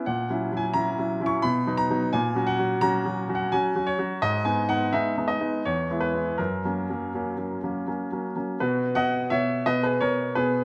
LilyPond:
<<
  \new Staff \with { instrumentName = "Grand piano" } { \time 3/4 \key b \major \tempo 4 = 86 fis''8. gis''16 ais''8. cis'''16 b''8 ais''8 | gis''8 fis''8 ais''8. fis''16 gis''8 cis''8 | \tuplet 3/2 { dis''8 gis''8 fis''8 } e''8 dis''8 cis''8 b'8 | ais'2~ ais'8 r8 |
<fis' b'>8 <dis'' fis''>8 <cis'' e''>8 <b' dis''>16 <gis' b'>16 <ais' cis''>8 <gis' b'>8 | }
  \new Staff \with { instrumentName = "Grand piano" } { \time 3/4 \key b \major \tuplet 3/2 { ais,8 <fis cis' e'>8 <fis cis' e'>8 <fis cis' e'>8 <fis cis' e'>8 <fis cis' e'>8 b,8 <fis b dis'>8 <fis b dis'>8 } | \tuplet 3/2 { ais,8 <fis cis' fis'>8 <fis cis' fis'>8 <fis cis' fis'>8 <fis cis' fis'>8 <fis cis' fis'>8 <fis cis' fis'>8 <fis cis' fis'>8 <fis cis' fis'>8 } | \tuplet 3/2 { gis,8 <gis b dis'>8 <gis b dis'>8 <gis b dis'>8 <gis b dis'>8 <gis b dis'>8 e,8 <gis b e'>8 <gis b e'>8 } | \tuplet 3/2 { fis,8 <fis ais cis'>8 <fis ais cis'>8 <fis ais cis'>8 <fis ais cis'>8 <fis ais cis'>8 <fis ais cis'>8 <fis ais cis'>8 <fis ais cis'>8 } |
b,8 b,8 b,8 b,8 b,8 b,8 | }
>>